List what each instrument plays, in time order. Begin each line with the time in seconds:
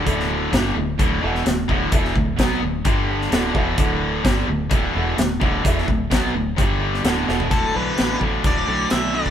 0.05 fingered electric bass D1, distorted electric guitar D2 A2 D3, upright piano A4 D5 E5, kick, closed hi-hat
0.20 snare
0.53 fingered electric bass G1, distorted electric guitar G2 D3 G3, kick, snare, closed hi-hat
0.76 fingered electric bass D1, distorted electric guitar D2 A2
0.99 fingered electric bass D1, distorted electric guitar D2 A2 D3, kick, closed hi-hat
1.22 fingered electric bass E1, distorted electric guitar E2 B2 E3, upright piano A4 D5 F#5
1.35 snare
1.45 fingered electric bass D1, distorted electric guitar D2 A2, snare, closed hi-hat
1.68 fingered electric bass D1, distorted electric guitar D2 A2 D3, upright piano A4 D5 F#5, kick
1.92 fingered electric bass E1, distorted electric guitar E2 B2 E3, upright piano A4 D5 E5, kick, closed hi-hat
2.05 snare
2.16 fingered electric bass D1, distorted electric guitar D2 A2, kick
2.39 fingered electric bass B1, distorted electric guitar B2 F#3 B3, kick, snare, closed hi-hat
2.62 fingered electric bass D1, distorted electric guitar D2 A2
2.85 fingered electric bass G1, distorted electric guitar G2 D3 G3, upright piano G4 D5 G5, kick, closed hi-hat
3.09 upright piano G4 D5 G5
3.21 snare
3.31 fingered electric bass D1, distorted electric guitar D2 A2 D3, upright piano A4 D5 F#5, snare, closed hi-hat
3.54 fingered electric bass E1, distorted electric guitar E2 B2 E3, upright piano A4 D5 F#5, kick
3.77 fingered electric bass D1, distorted electric guitar D2 A2 D3, upright piano A4 D5 F#5, kick, closed hi-hat
4.23 fingered electric bass G1, distorted electric guitar G2 D3 G3, kick, snare, closed hi-hat
4.47 fingered electric bass D1, distorted electric guitar D2 A2
4.69 fingered electric bass D1, distorted electric guitar D2 A2 D3, kick, closed hi-hat
4.93 fingered electric bass E1, distorted electric guitar E2 B2 E3, upright piano A4 D5 F#5
5.17 fingered electric bass D1, distorted electric guitar D2 A2, snare, closed hi-hat
5.40 fingered electric bass D1, distorted electric guitar D2 A2 D3, upright piano A4 D5 F#5, kick
5.64 fingered electric bass E1, distorted electric guitar E2 B2 E3, upright piano A4 D5 E5, kick, closed hi-hat
5.78 snare
5.87 fingered electric bass D1, distorted electric guitar D2 A2, kick
6.10 fingered electric bass B1, distorted electric guitar B2 F#3 B3, kick, snare, closed hi-hat
6.34 fingered electric bass D1, distorted electric guitar D2 A2
6.56 fingered electric bass G1, distorted electric guitar G2 D3 G3, upright piano G4 D5 G5, kick, closed hi-hat
6.81 upright piano G4 D5 G5
6.94 snare
7.04 fingered electric bass D1, distorted electric guitar D2 A2 D3, upright piano A4 D5 F#5, snare, closed hi-hat
7.28 fingered electric bass E1, distorted electric guitar E2 B2 E3, upright piano A4 D5 F#5, snare
7.40 floor tom
7.50 fingered electric bass D1, distorted electric guitar D2 A2 D3, lead electric guitar A4, kick, closed hi-hat
7.73 fingered electric bass B1, distorted electric guitar D2 A2 D3, lead electric guitar B4
7.97 fingered electric bass A1, distorted electric guitar D2 A2 D3, snare, closed hi-hat
8.20 fingered electric bass A1, distorted electric guitar D2 A2 D3, kick
8.44 fingered electric bass D1, distorted electric guitar D2 A2 D3, lead electric guitar D5, kick, closed hi-hat
8.68 fingered electric bass B1, distorted electric guitar D2 A2 D3
8.90 fingered electric bass B1, distorted electric guitar D2 A2 D3, lead electric guitar E5, snare, closed hi-hat
9.14 distorted electric guitar D2 A2 D3, lead electric guitar D5
9.26 kick